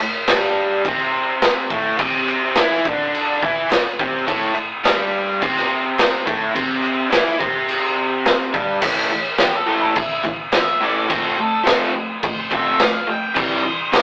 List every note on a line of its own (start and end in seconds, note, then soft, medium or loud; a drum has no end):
0.01 0.23 A2 medium
0.28 0.84 G2 loud
0.28 0.85 G3 loud
0.28 snare loud
0.28 clap loud
0.28 crash medium
0.42 snare soft
0.85 1.71 C3 medium
0.85 1.71 C4 medium
0.85 kick loud
0.85 crash medium
1.42 snare loud
1.42 clap loud
1.42 crash medium
1.70 1.99 A2 loud
1.70 2.00 A3 loud
1.70 kick loud
1.99 2.56 C3 loud
1.99 2.56 C4 loud
1.99 kick loud
1.99 crash medium
2.29 clap medium
2.55 2.85 E3 medium
2.55 2.86 E4 loud
2.55 snare loud
2.55 clap loud
2.55 crash medium
2.72 snare soft
2.85 3.42 D3 loud
2.85 3.43 D4 loud
2.85 kick loud
3.14 crash medium
3.43 3.71 E3 medium
3.43 3.71 E4 medium
3.43 kick loud
3.70 3.94 A2 medium
3.70 snare loud
3.70 clap medium
3.70 crash medium
3.99 4.26 C3 loud
3.99 4.27 C4 medium
3.99 kick loud
4.26 4.54 A2 loud
4.26 4.55 A3 loud
4.26 kick loud
4.26 crash medium
4.55 4.79 A2 medium
4.55 clap medium
4.84 5.40 G2 medium
4.84 5.41 G3 loud
4.84 snare loud
4.84 clap medium
4.84 crash medium
5.40 6.25 C3 medium
5.40 6.26 C4 medium
5.40 kick loud
5.40 crash medium
5.57 snare soft
5.99 snare loud
5.99 clap loud
5.99 crash medium
6.25 6.54 A2 loud
6.25 6.54 A3 loud
6.25 kick loud
6.55 7.10 C3 loud
6.55 7.10 C4 loud
6.55 kick loud
6.55 crash medium
6.84 clap medium
7.10 7.38 E3 loud
7.10 7.39 E4 loud
7.10 snare loud
7.10 clap loud
7.10 crash medium
7.27 snare soft
7.39 8.53 C3 medium
7.39 8.53 C4 loud
7.39 kick loud
7.69 crash medium
8.26 snare loud
8.26 clap loud
8.26 crash medium
8.53 8.81 G2 loud
8.53 8.82 G3 loud
8.53 kick loud
8.81 9.09 A2 loud
8.81 9.10 E3 loud
8.81 9.10 A3 loud
8.81 kick loud
8.81 crash loud
8.81 crash medium
9.12 9.37 A2 medium
9.12 9.37 E3 medium
9.38 9.65 A2 medium
9.38 9.65 E3 medium
9.38 9.55 G4 loud
9.38 snare loud
9.38 clap medium
9.38 crash medium
9.55 9.68 A4 medium
9.66 9.94 A2 medium
9.66 9.94 E3 loud
9.66 9.95 A3 loud
9.71 9.83 C5 medium
9.81 9.96 A4 medium
9.95 10.21 A2 medium
9.95 10.22 E3 medium
9.95 10.25 E4 loud
9.95 kick loud
9.95 crash medium
10.24 10.50 A2 medium
10.24 10.51 E3 medium
10.24 kick medium
10.24 clap medium
10.52 10.80 A2 medium
10.52 10.80 E3 medium
10.52 10.81 E5 loud
10.52 snare loud
10.52 clap medium
10.52 crash medium
10.81 11.08 A2 loud
10.81 11.08 E3 loud
10.81 11.09 A3 loud
10.81 11.10 D5 loud
11.09 11.36 F3 medium
11.09 11.37 A3 loud
11.09 11.37 C4 loud
11.09 11.39 C5 loud
11.09 kick loud
11.09 crash medium
11.38 11.62 F3 medium
11.38 11.64 A3 loud
11.38 11.67 A4 loud
11.64 11.92 F3 medium
11.64 11.92 A3 loud
11.64 11.93 C4 loud
11.64 snare loud
11.64 clap loud
11.64 crash medium
11.94 12.20 F3 medium
11.94 12.20 A3 medium
12.23 12.49 F3 medium
12.23 12.49 A3 medium
12.23 12.38 C5 medium
12.23 kick loud
12.23 crash medium
12.40 12.53 C5 medium
12.51 12.78 F3 medium
12.51 12.78 A3 loud
12.51 12.79 C4 loud
12.51 12.81 E5 medium
12.51 kick medium
12.51 clap medium
12.80 13.06 F3 medium
12.80 13.06 A3 medium
12.80 13.09 F5 loud
12.80 snare loud
12.80 clap medium
12.80 crash medium
13.07 13.33 F3 medium
13.07 13.34 A3 medium
13.07 13.37 G5 medium
13.35 13.62 C3 loud
13.35 13.63 E3 loud
13.35 13.64 G3 loud
13.35 14.02 C5 loud
13.35 kick loud
13.35 crash medium
13.64 13.90 C3 medium
13.64 13.91 E3 medium
13.92 14.02 C3 medium
13.92 14.02 E3 medium
13.92 snare loud
13.92 clap medium
13.92 crash medium